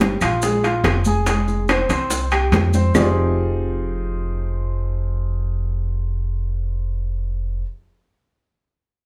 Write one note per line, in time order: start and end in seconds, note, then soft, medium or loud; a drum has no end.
0.00 0.16 G1 medium
0.00 0.15 G3 medium
0.00 0.15 G4 medium
0.00 high bongo medium
0.00 high conga medium
0.00 high timbale medium
0.00 maracas soft
0.21 0.81 A#1 medium
0.21 0.39 F4 medium
0.21 0.39 F5 medium
0.21 high bongo soft
0.21 high timbale medium
0.21 claves medium
0.21 maracas medium
0.42 0.60 G#3 medium
0.42 0.60 G#4 medium
0.42 high bongo medium
0.42 high conga soft
0.42 maracas medium
0.64 0.98 F4 medium
0.64 0.98 F5 medium
0.64 high bongo soft
0.64 high conga soft
0.64 high timbale medium
0.64 maracas soft
0.84 1.83 F1 medium
0.84 high bongo medium
0.84 low bongo medium
0.84 high conga soft
0.84 high timbale loud
0.84 claves medium
0.84 maracas soft
1.05 1.24 G#4 medium
1.05 1.24 G#5 medium
1.05 high bongo soft
1.05 high conga medium
1.05 maracas medium
1.26 1.62 G#3 medium
1.26 1.62 G#4 medium
1.26 high bongo medium
1.26 high conga soft
1.26 high timbale medium
1.26 maracas medium
1.48 high bongo soft
1.48 high conga soft
1.48 maracas soft
1.68 1.87 C4 medium
1.68 1.87 C5 medium
1.68 high bongo medium
1.68 high conga soft
1.68 high timbale loud
1.68 claves medium
1.68 maracas soft
1.89 2.48 C2 medium
1.89 2.25 C4 medium
1.89 2.25 C5 medium
1.89 high conga soft
1.89 high timbale medium
1.89 maracas medium
2.10 high bongo medium
2.10 high conga soft
2.10 maracas medium
2.31 2.66 G4 medium
2.31 2.66 G5 medium
2.31 high bongo soft
2.31 high conga soft
2.31 high timbale medium
2.31 claves medium
2.31 maracas soft
2.52 2.89 F2 medium
2.52 high bongo medium
2.52 low bongo medium
2.52 high conga medium
2.52 high timbale medium
2.52 maracas soft
2.73 2.92 C4 medium
2.73 2.92 C5 medium
2.73 high bongo soft
2.73 high conga medium
2.73 maracas medium
2.94 7.62 F1 medium
2.94 7.61 F3 medium
2.94 7.62 C4 medium
2.94 7.62 D#4 medium
2.94 7.62 F4 medium
2.94 7.62 G4 medium
2.94 7.62 G#4 medium
2.94 low bongo medium
2.94 low conga loud
2.94 low timbale medium
2.94 claves medium
2.94 maracas medium